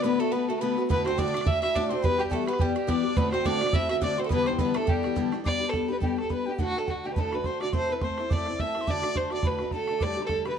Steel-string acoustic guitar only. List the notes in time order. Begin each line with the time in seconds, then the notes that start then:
0.03 D2 A2 D3 A3 B3 F#4
0.20 D3 A3 B3 F#4
0.33 D3 A3 B3 F#4
0.48 D3 A3 B3 F#4
0.61 D2 A2 D3 A3 B3 F#4
0.77 D3 A3 B3 F#4
0.89 D2 A2 D3 A3 D4 F#4
1.05 D3 A3 D4 F#4
1.18 D2 A2 D3 A3 D4 F#4
1.33 D3 A3 D4 F#4
1.46 D3 A3 D4 F#4
1.62 D3 A3 D4 F#4
1.75 D2 A2 D3 A3 D4 F#4
1.91 D3 A3 D4 F#4
2.03 E3 G3 B3 G4
2.18 G3 B3 G4
2.30 E3 G3 B3 G4
2.46 G3 B3 G4
2.59 E3 G3 B3 G4
2.75 G3 B3 G4
2.87 E3 G3 B3 G4
3.03 G3 B3 G4
3.16 D2 A2 D3 A3 C4 F#4
3.32 D3 A3 C4 F#4
3.45 D2 A2 D3 A3 C4 F#4
3.61 D3 A3 C4 F#4
3.73 D3 A3 C4 F#4
3.89 D3 A3 C4 F#4
4.01 D2 A2 D3 A3 C4 F#4
4.17 D3 A3 C4 F#4
4.30 G2 D3 E3 G3 B3 D4
4.46 E3 G3 B3 D4
4.59 G2 D3 E3 G3 B3 D4
4.74 E3 G3 B3 D4
4.87 E3 G3 B3 D4
5.03 E3 G3 B3 D4
5.16 G2 D3 E3 G3 B3 D4
5.32 E3 G3 B3 D4
5.44 G3 B3 D4 G4
5.60 B3 D4 G4
5.73 G3 B3 D4 G4
5.88 B3 D4 G4
6.00 G3 B3 D4 G4
6.16 B3 D4 G4
6.29 G3 B3 D4 G4
6.46 B3 D4 G4
6.58 D2 A2 D3 A3 D4 F#4
6.75 D3 A3 D4 F#4
6.87 D3 A3 D4 F#4
7.04 D3 A3 D4 F#4
7.16 D2 A2 D3 A3 D4 F#4
7.32 D3 A3 D4 F#4
7.44 D3 A3 D4 F#4
7.60 D3 A3 D4 F#4
7.72 A2 A3 C4 E4 A4
7.89 C4 E4 A4
8.01 A3 C4 E4 A4
8.18 C4 E4 A4
8.31 A2 A3 C4 E4 A4
8.46 C4 E4 A4
8.59 A3 C4 E4 A4
8.75 C4 E4 A4
8.87 D2 A2 D3 A3 D4 F#4
9.02 D3 A3 D4 F#4
9.14 D3 A3 D4 F#4
9.31 D3 A3 D4 F#4
9.44 D2 A2 D3 A3 D4 F#4
9.60 D3 A3 D4 F#4
9.72 D3 A3 D4 F#4
9.88 D3 A3 D4 F#4
10.00 D2 A2 D3 G3 A3 G4
10.17 D3 G3 A3 G4
10.29 D3 G3 A3 G4
10.45 D3 G3 A3 G4